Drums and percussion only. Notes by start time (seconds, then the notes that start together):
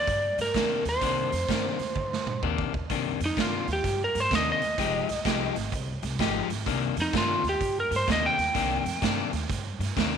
0.07 kick, closed hi-hat
0.38 snare, closed hi-hat
0.54 kick, snare, closed hi-hat
0.85 snare, closed hi-hat
1.01 kick, closed hi-hat
1.32 snare, closed hi-hat
1.49 kick, snare, closed hi-hat
1.79 snare, closed hi-hat
1.96 kick, high tom
2.13 snare
2.27 mid tom
2.43 kick
2.58 kick
2.74 kick
2.90 kick, closed hi-hat
3.20 snare, closed hi-hat
3.37 kick, snare, closed hi-hat
3.68 snare, closed hi-hat
3.84 kick, snare, closed hi-hat
4.15 snare, closed hi-hat
4.31 kick, snare, closed hi-hat
4.62 snare, closed hi-hat
4.78 kick, snare, closed hi-hat
5.09 snare, closed hi-hat
5.25 kick, snare, closed hi-hat
5.56 snare, closed hi-hat
5.72 kick, closed hi-hat
6.03 snare, closed hi-hat
6.19 kick, snare, closed hi-hat
6.50 snare, closed hi-hat
6.66 kick, closed hi-hat
6.97 snare, closed hi-hat
7.13 kick, snare, closed hi-hat
7.44 snare, closed hi-hat
7.61 kick, closed hi-hat
7.92 snare, closed hi-hat
8.08 kick, snare, closed hi-hat
8.39 snare, closed hi-hat
8.55 kick, snare, closed hi-hat
8.86 snare, closed hi-hat
9.02 kick, snare, closed hi-hat
9.33 snare, closed hi-hat
9.50 kick, snare, closed hi-hat
9.81 snare, closed hi-hat
9.97 kick, snare, closed hi-hat